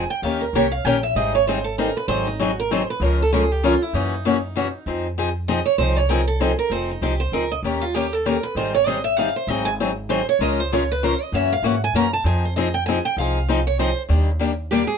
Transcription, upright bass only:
0.22 D#2
0.53 C2
0.85 A#1
1.15 G#1
2.08 G#1
3.00 C#2
3.93 F#2
4.86 F2
5.78 C2
6.70 F1
7.01 C2
7.32 C#2
7.63 D#2
8.55 G#1
9.47 G#1
10.39 C#2
11.32 F#2
11.62 G#2
11.93 F#2
12.24 F2
13.17 C2
14.09 D#2

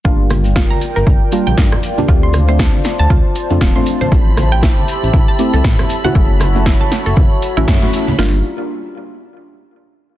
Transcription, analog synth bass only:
0.05 G1
0.96 G1
1.07 G1
1.47 A#1
1.58 G2
2.08 D2
3.00 D2
3.10 D2
3.50 F2
3.61 D1
4.12 A1
5.03 A1
5.13 A1
5.54 C2
5.64 A2
6.15 F#1
7.06 F#1
7.17 F#1
7.57 A1
7.68 F#2
8.19 G1

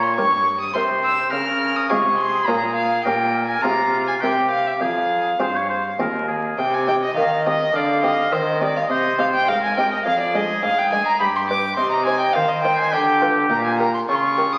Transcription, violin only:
0.03 C6
0.16 C#6
0.60 D#6
0.74 C6
1.04 E6
1.32 F6
1.76 D#6
1.90 C#6
2.18 C6
2.47 A#5
2.75 F5
3.04 G5
3.47 G#5
3.62 A#5
4.07 G#5
4.21 G5
4.51 F5
4.67 E5
4.80 F5
6.58 G5
6.74 G#5
6.88 G5
7.04 D#5
7.17 F5
7.45 D#5
7.75 D5
8.03 D#5
8.33 C5
8.62 D5
8.76 F5
8.90 D#5
9.19 F5
9.34 G5
9.48 F5
9.64 G#5
9.77 G5
9.92 D#5
10.05 F5
10.20 D5
10.36 D#5
10.65 F5
10.79 G5
10.93 G#5
11.07 A#5
11.20 B5
11.35 C6
11.49 D6
11.76 C6
11.91 A#5
12.06 G#5
12.20 G5
12.33 F5
12.48 D#5
12.63 G5
12.79 G#5
12.92 G5
13.50 A#5
13.65 G#5
13.79 A#5
13.94 C6
14.08 C#6
14.15 C6
14.22 C#6
14.53 D#6

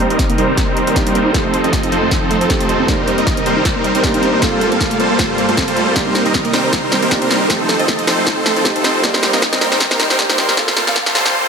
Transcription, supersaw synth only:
0.10 G3 C4 D#4 A#4 D#5
0.38 G3 C4 D#4 A#4 C5
0.87 G3 C4 D#4 A#4 C5
1.06 G3 C4 D#4 A#4 C5
1.34 F3 C4 D#4 A4 C5
1.64 F3 C4 D#4 A4 D#5
1.92 F3 C4 D#4 A4 C5
2.41 F3 C4 D#4 A4 C5
2.60 F3 C4 D#4 A4 C5
2.88 G3 C4 D#4 A#4 C5
3.18 G3 C4 D#4 A#4 D#5
3.46 G3 C4 D#4 A#4 C5
3.95 G3 C4 D#4 A#4 C5
4.14 G3 C4 D#4 A#4 C5
4.42 G3 A#3 F4 A4 C5
4.72 G3 A#3 F4 A4 F5
5.00 G3 A#3 F4 A4 C5
5.49 G3 A#3 F4 A4 C5
5.68 G3 A#3 F4 A4 C5
5.96 G3 C4 D#4 A#4 C5
6.26 G3 C4 D#4 A#4 D#5
6.54 G3 C4 D#4 A#4 C5
7.03 G3 C4 D#4 A#4 C5
7.22 G3 C4 D#4 A#4 C5
7.50 F3 C4 D#4 A4 C5
7.80 F3 C4 D#4 A4 D#5
8.08 F3 C4 D#4 A4 C5
8.56 F3 C4 D#4 A4 C5
8.76 F3 C4 D#4 A4 C5
9.04 G3 C4 D#4 A#4 C5
9.33 G3 C4 D#4 A#4 D#5
9.61 G3 C4 D#4 A#4 C5
10.10 G3 C4 D#4 A#4 C5
10.30 G3 C4 D#4 A#4 C5
10.58 G3 A#3 F4 A4 C5
10.87 G3 A#3 F4 A4 F5
11.15 G3 A#3 F4 A4 C5

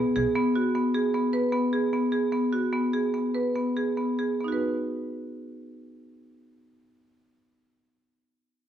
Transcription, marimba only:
Already playing: B3
0.16 G#4
0.35 B3
0.56 F#4
0.75 B3
0.94 G#4
1.14 B3
1.33 B4
1.52 B3
1.73 G#4
1.93 B3
2.12 G#4
2.32 B3
2.53 F#4
2.73 B3
2.93 G#4
3.14 B3
3.34 B4
3.55 B3
3.77 G#4
3.97 B3
4.19 G#4
4.40 B3 D#4
4.48 F#4
4.52 B4

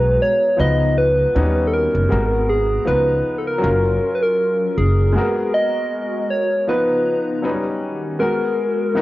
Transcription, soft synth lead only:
Already playing: B4
0.22 C#5
0.60 D#5
0.98 B4
1.67 A4
1.74 A#4
2.49 G#4
2.87 B4
3.38 A4
3.47 A#4
4.15 B4
4.23 A#4
4.78 G#4
5.54 D#5
6.30 C#5
6.69 B4
8.20 A#4

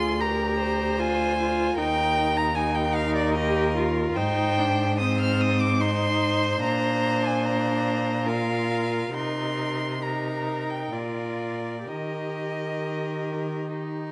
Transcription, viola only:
Already playing: F4
0.20 G4
1.00 F4
1.40 F4
1.78 D#4
2.55 D#4
3.35 G4
3.77 F4
4.17 D#4
4.59 D4
5.00 C4
5.80 D#4
6.62 D4
8.26 F4
9.16 D#4
10.03 D#4
10.92 F4
11.87 G4

